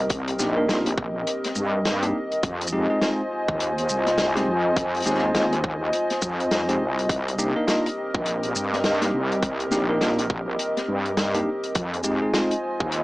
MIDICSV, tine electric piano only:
0, 0, Header, 1, 2, 480
1, 0, Start_track
1, 0, Key_signature, -3, "minor"
1, 0, Tempo, 582524
1, 86, Time_signature, 4, 2, 24, 8
1, 10741, End_track
2, 0, Start_track
2, 0, Title_t, "Tine electric piano"
2, 0, Program_c, 0, 4
2, 324, Note_on_c, 0, 62, 85
2, 324, Note_on_c, 0, 63, 85
2, 324, Note_on_c, 0, 67, 99
2, 325, Note_on_c, 0, 58, 93
2, 448, Note_off_c, 0, 58, 0
2, 448, Note_off_c, 0, 62, 0
2, 448, Note_off_c, 0, 63, 0
2, 448, Note_off_c, 0, 67, 0
2, 470, Note_on_c, 0, 58, 78
2, 470, Note_on_c, 0, 62, 73
2, 470, Note_on_c, 0, 63, 68
2, 470, Note_on_c, 0, 70, 86
2, 542, Note_off_c, 0, 62, 0
2, 542, Note_off_c, 0, 63, 0
2, 542, Note_off_c, 0, 70, 0
2, 543, Note_off_c, 0, 58, 0
2, 565, Note_on_c, 0, 62, 75
2, 566, Note_on_c, 0, 58, 86
2, 566, Note_on_c, 0, 63, 74
2, 566, Note_on_c, 0, 65, 97
2, 724, Note_off_c, 0, 58, 0
2, 724, Note_off_c, 0, 62, 0
2, 724, Note_off_c, 0, 63, 0
2, 724, Note_off_c, 0, 65, 0
2, 1670, Note_on_c, 0, 58, 89
2, 1670, Note_on_c, 0, 62, 83
2, 1670, Note_on_c, 0, 63, 81
2, 1670, Note_on_c, 0, 67, 95
2, 1786, Note_off_c, 0, 58, 0
2, 1786, Note_off_c, 0, 62, 0
2, 1786, Note_off_c, 0, 63, 0
2, 1786, Note_off_c, 0, 67, 0
2, 2246, Note_on_c, 0, 56, 90
2, 2246, Note_on_c, 0, 60, 82
2, 2247, Note_on_c, 0, 63, 86
2, 2247, Note_on_c, 0, 67, 100
2, 2369, Note_off_c, 0, 56, 0
2, 2369, Note_off_c, 0, 60, 0
2, 2369, Note_off_c, 0, 63, 0
2, 2369, Note_off_c, 0, 67, 0
2, 2389, Note_on_c, 0, 60, 68
2, 2389, Note_on_c, 0, 68, 85
2, 2390, Note_on_c, 0, 56, 78
2, 2390, Note_on_c, 0, 63, 69
2, 2462, Note_off_c, 0, 56, 0
2, 2462, Note_off_c, 0, 60, 0
2, 2462, Note_off_c, 0, 63, 0
2, 2462, Note_off_c, 0, 68, 0
2, 2485, Note_on_c, 0, 56, 82
2, 2485, Note_on_c, 0, 63, 74
2, 2486, Note_on_c, 0, 60, 75
2, 2486, Note_on_c, 0, 65, 91
2, 2644, Note_off_c, 0, 56, 0
2, 2644, Note_off_c, 0, 60, 0
2, 2644, Note_off_c, 0, 63, 0
2, 2645, Note_off_c, 0, 65, 0
2, 3589, Note_on_c, 0, 63, 81
2, 3589, Note_on_c, 0, 67, 98
2, 3590, Note_on_c, 0, 56, 88
2, 3590, Note_on_c, 0, 60, 81
2, 3706, Note_off_c, 0, 56, 0
2, 3706, Note_off_c, 0, 60, 0
2, 3706, Note_off_c, 0, 63, 0
2, 3706, Note_off_c, 0, 67, 0
2, 4166, Note_on_c, 0, 56, 92
2, 4166, Note_on_c, 0, 60, 85
2, 4166, Note_on_c, 0, 63, 81
2, 4166, Note_on_c, 0, 67, 103
2, 4289, Note_off_c, 0, 56, 0
2, 4289, Note_off_c, 0, 60, 0
2, 4289, Note_off_c, 0, 63, 0
2, 4289, Note_off_c, 0, 67, 0
2, 4310, Note_on_c, 0, 56, 79
2, 4310, Note_on_c, 0, 60, 70
2, 4311, Note_on_c, 0, 63, 69
2, 4311, Note_on_c, 0, 68, 86
2, 4382, Note_off_c, 0, 60, 0
2, 4383, Note_off_c, 0, 56, 0
2, 4383, Note_off_c, 0, 63, 0
2, 4383, Note_off_c, 0, 68, 0
2, 4405, Note_on_c, 0, 56, 82
2, 4405, Note_on_c, 0, 60, 72
2, 4405, Note_on_c, 0, 63, 76
2, 4405, Note_on_c, 0, 65, 89
2, 4564, Note_off_c, 0, 56, 0
2, 4564, Note_off_c, 0, 60, 0
2, 4564, Note_off_c, 0, 63, 0
2, 4564, Note_off_c, 0, 65, 0
2, 5510, Note_on_c, 0, 63, 80
2, 5511, Note_on_c, 0, 56, 91
2, 5511, Note_on_c, 0, 60, 80
2, 5511, Note_on_c, 0, 67, 92
2, 5626, Note_off_c, 0, 56, 0
2, 5626, Note_off_c, 0, 63, 0
2, 5626, Note_off_c, 0, 67, 0
2, 5627, Note_off_c, 0, 60, 0
2, 6086, Note_on_c, 0, 58, 96
2, 6086, Note_on_c, 0, 62, 83
2, 6086, Note_on_c, 0, 63, 83
2, 6086, Note_on_c, 0, 67, 106
2, 6209, Note_off_c, 0, 58, 0
2, 6209, Note_off_c, 0, 62, 0
2, 6209, Note_off_c, 0, 63, 0
2, 6209, Note_off_c, 0, 67, 0
2, 6231, Note_on_c, 0, 58, 78
2, 6231, Note_on_c, 0, 62, 69
2, 6231, Note_on_c, 0, 63, 73
2, 6231, Note_on_c, 0, 70, 89
2, 6303, Note_off_c, 0, 58, 0
2, 6303, Note_off_c, 0, 62, 0
2, 6303, Note_off_c, 0, 63, 0
2, 6303, Note_off_c, 0, 70, 0
2, 6324, Note_on_c, 0, 58, 83
2, 6324, Note_on_c, 0, 63, 75
2, 6324, Note_on_c, 0, 65, 96
2, 6325, Note_on_c, 0, 62, 74
2, 6483, Note_off_c, 0, 63, 0
2, 6483, Note_off_c, 0, 65, 0
2, 6484, Note_off_c, 0, 58, 0
2, 6484, Note_off_c, 0, 62, 0
2, 7430, Note_on_c, 0, 67, 97
2, 7431, Note_on_c, 0, 58, 88
2, 7431, Note_on_c, 0, 62, 81
2, 7431, Note_on_c, 0, 63, 81
2, 7546, Note_off_c, 0, 58, 0
2, 7546, Note_off_c, 0, 62, 0
2, 7546, Note_off_c, 0, 67, 0
2, 7547, Note_off_c, 0, 63, 0
2, 8006, Note_on_c, 0, 58, 92
2, 8006, Note_on_c, 0, 62, 87
2, 8006, Note_on_c, 0, 63, 86
2, 8006, Note_on_c, 0, 67, 109
2, 8129, Note_off_c, 0, 58, 0
2, 8129, Note_off_c, 0, 62, 0
2, 8129, Note_off_c, 0, 63, 0
2, 8129, Note_off_c, 0, 67, 0
2, 8151, Note_on_c, 0, 62, 67
2, 8151, Note_on_c, 0, 63, 74
2, 8152, Note_on_c, 0, 58, 75
2, 8152, Note_on_c, 0, 70, 89
2, 8223, Note_off_c, 0, 58, 0
2, 8223, Note_off_c, 0, 62, 0
2, 8223, Note_off_c, 0, 63, 0
2, 8223, Note_off_c, 0, 70, 0
2, 8246, Note_on_c, 0, 62, 78
2, 8246, Note_on_c, 0, 63, 76
2, 8247, Note_on_c, 0, 58, 85
2, 8247, Note_on_c, 0, 65, 91
2, 8405, Note_off_c, 0, 58, 0
2, 8405, Note_off_c, 0, 62, 0
2, 8405, Note_off_c, 0, 63, 0
2, 8405, Note_off_c, 0, 65, 0
2, 9349, Note_on_c, 0, 63, 80
2, 9350, Note_on_c, 0, 58, 88
2, 9350, Note_on_c, 0, 62, 81
2, 9350, Note_on_c, 0, 67, 98
2, 9466, Note_off_c, 0, 58, 0
2, 9466, Note_off_c, 0, 62, 0
2, 9466, Note_off_c, 0, 63, 0
2, 9466, Note_off_c, 0, 67, 0
2, 9924, Note_on_c, 0, 56, 97
2, 9924, Note_on_c, 0, 60, 85
2, 9924, Note_on_c, 0, 63, 87
2, 9925, Note_on_c, 0, 67, 100
2, 10048, Note_off_c, 0, 56, 0
2, 10048, Note_off_c, 0, 60, 0
2, 10048, Note_off_c, 0, 63, 0
2, 10049, Note_off_c, 0, 67, 0
2, 10069, Note_on_c, 0, 56, 77
2, 10069, Note_on_c, 0, 60, 69
2, 10069, Note_on_c, 0, 63, 69
2, 10069, Note_on_c, 0, 68, 87
2, 10142, Note_off_c, 0, 56, 0
2, 10142, Note_off_c, 0, 60, 0
2, 10142, Note_off_c, 0, 63, 0
2, 10142, Note_off_c, 0, 68, 0
2, 10163, Note_on_c, 0, 60, 74
2, 10163, Note_on_c, 0, 65, 97
2, 10164, Note_on_c, 0, 56, 80
2, 10164, Note_on_c, 0, 63, 75
2, 10323, Note_off_c, 0, 60, 0
2, 10323, Note_off_c, 0, 63, 0
2, 10323, Note_off_c, 0, 65, 0
2, 10324, Note_off_c, 0, 56, 0
2, 10741, End_track
0, 0, End_of_file